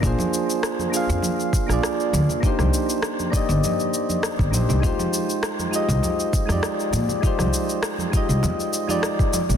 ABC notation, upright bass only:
X:1
M:4/4
L:1/16
Q:1/4=100
K:Fdor
V:1 name="Upright bass" clef=bass
B,,, z6 F,, z3 B,,, z2 D,, z | z C,, z4 z G,,, z4 z G,,, B,,, C,, | F,, z6 C,, z3 F,, z2 B,, z | z C,, z4 z C,, F,, z6 B,,, |]